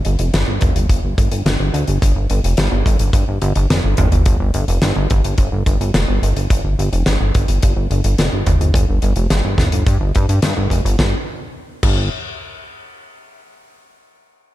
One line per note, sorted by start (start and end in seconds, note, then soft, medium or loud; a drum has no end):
0.05 0.16 G1 loud
0.05 closed hi-hat medium
0.19 0.30 F1 medium
0.19 closed hi-hat medium
0.34 0.44 G1 loud
0.34 snare loud
0.34 closed hi-hat medium
0.48 0.58 G1 medium
0.61 0.73 G1 medium
0.61 kick loud
0.61 closed hi-hat medium
0.61 mid tom medium
0.76 0.86 G1 medium
0.76 closed hi-hat medium
0.90 1.00 G1 loud
0.90 kick loud
0.90 closed hi-hat loud
1.04 1.14 G1 medium
1.18 1.29 G1 medium
1.18 kick loud
1.18 closed hi-hat medium
1.32 1.43 G1 medium
1.32 closed hi-hat medium
1.46 1.57 G1 loud
1.46 snare loud
1.46 closed hi-hat medium
1.60 1.71 G1 medium
1.74 1.85 D2 medium
1.74 closed hi-hat medium
1.88 1.99 G1 medium
1.88 closed hi-hat medium
2.02 2.13 G1 loud
2.02 kick loud
2.02 closed hi-hat medium
2.16 2.27 G1 medium
2.30 2.41 G1 loud
2.30 closed hi-hat medium
2.44 2.55 F1 medium
2.44 closed hi-hat medium
2.57 2.69 G1 loud
2.57 snare loud
2.57 closed hi-hat medium
2.72 2.83 G1 medium
2.86 2.97 G1 loud
2.86 kick loud
2.86 closed hi-hat medium
2.99 3.11 G1 medium
2.99 closed hi-hat medium
3.13 3.24 G1 loud
3.13 kick loud
3.13 closed hi-hat medium
3.28 3.39 G1 medium
3.42 3.53 G1 loud
3.42 closed hi-hat medium
3.55 3.67 G1 medium
3.55 closed hi-hat medium
3.70 3.81 F1 loud
3.70 snare loud
3.70 closed hi-hat medium
3.84 3.95 G1 medium
3.97 4.09 G1 medium
3.97 closed hi-hat medium
3.97 mid tom loud
4.12 4.23 G1 medium
4.12 closed hi-hat medium
4.26 4.37 G1 loud
4.26 kick loud
4.26 closed hi-hat loud
4.40 4.51 G1 medium
4.54 4.65 G1 medium
4.54 closed hi-hat medium
4.68 4.79 F1 medium
4.68 closed hi-hat medium
4.82 4.93 G1 loud
4.82 snare loud
4.82 closed hi-hat loud
4.96 5.07 G1 medium
5.10 5.21 G1 loud
5.10 kick loud
5.10 closed hi-hat medium
5.24 5.35 G1 medium
5.24 closed hi-hat medium
5.38 5.49 G1 loud
5.38 kick loud
5.38 closed hi-hat medium
5.52 5.63 G1 medium
5.66 5.77 G1 medium
5.66 kick loud
5.66 closed hi-hat medium
5.80 5.91 G1 medium
5.80 closed hi-hat medium
5.94 6.05 F1 loud
5.94 snare loud
5.94 closed hi-hat medium
6.08 6.19 G1 medium
6.22 6.33 G1 medium
6.22 closed hi-hat medium
6.36 6.47 G1 medium
6.36 closed hi-hat medium
6.50 6.61 G1 loud
6.50 kick loud
6.50 closed hi-hat loud
6.64 6.75 G1 medium
6.78 6.89 G1 loud
6.78 closed hi-hat medium
6.92 7.03 F1 medium
6.92 closed hi-hat medium
7.06 7.17 G1 loud
7.06 snare loud
7.06 closed hi-hat medium
7.20 7.31 G1 medium
7.34 7.46 G1 medium
7.34 kick loud
7.34 closed hi-hat medium
7.48 7.59 G1 medium
7.48 closed hi-hat medium
7.62 7.74 G1 loud
7.62 kick loud
7.62 closed hi-hat medium
7.76 7.87 G1 medium
7.91 8.01 G1 medium
7.91 closed hi-hat medium
8.04 8.15 G1 medium
8.04 closed hi-hat medium
8.18 8.29 F1 loud
8.18 snare loud
8.18 closed hi-hat medium
8.32 8.43 G1 medium
8.46 8.57 G1 medium
8.46 closed hi-hat medium
8.46 mid tom medium
8.61 8.71 G1 medium
8.61 closed hi-hat medium
8.74 8.85 G1 loud
8.74 kick loud
8.74 closed hi-hat loud
8.89 8.99 G1 medium
9.02 9.13 G1 medium
9.02 closed hi-hat medium
9.16 9.27 F1 medium
9.16 closed hi-hat medium
9.30 9.42 G1 loud
9.30 snare loud
9.30 closed hi-hat loud
9.45 9.56 G1 medium
9.58 9.69 G1 medium
9.58 kick medium
9.58 snare medium
9.58 closed hi-hat medium
9.58 mid tom medium
9.72 9.84 G1 medium
9.72 closed hi-hat medium
9.87 9.98 G2 loud
9.87 kick loud
9.87 closed hi-hat loud
10.01 10.12 G1 medium
10.15 10.26 G2 medium
10.15 kick loud
10.15 closed hi-hat medium
10.29 10.40 G2 medium
10.29 closed hi-hat medium
10.42 10.54 G2 loud
10.42 snare loud
10.42 closed hi-hat loud
10.57 10.68 G1 medium
10.70 10.81 F1 medium
10.70 kick medium
10.70 closed hi-hat medium
10.85 10.96 G1 medium
10.85 closed hi-hat medium
10.99 11.15 G1 loud
10.99 kick loud
10.99 snare medium
11.83 12.09 G1 loud
11.83 kick loud
11.83 crash medium